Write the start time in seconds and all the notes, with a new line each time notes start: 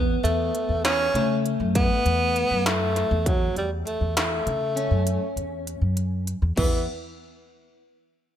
Already playing: E2 B3 C#4
0.24 E2 A3, closed hi-hat
0.55 closed hi-hat
0.69 E2
0.84 C#4, snare, closed hi-hat
1.14 C#3 A3, snare, closed hi-hat
1.46 closed hi-hat
1.60 F#2
1.75 B3, kick, closed hi-hat
2.06 E2, closed hi-hat
2.36 closed hi-hat
2.51 F#2
2.66 A3, snare, closed hi-hat
2.96 snare, closed hi-hat
3.11 E2
3.26 F#3, kick, closed hi-hat
3.56 E2 G3, closed hi-hat
3.86 A3, closed hi-hat
4.01 E2
4.17 A3, snare, closed hi-hat
4.47 C#3, closed hi-hat
4.76 C#4, closed hi-hat
4.91 F#2
5.07 closed hi-hat
5.36 E2, closed hi-hat
5.67 closed hi-hat
5.82 F#2
5.97 closed hi-hat
6.27 closed hi-hat
6.42 E2
6.57 E2 E3 B3, kick, crash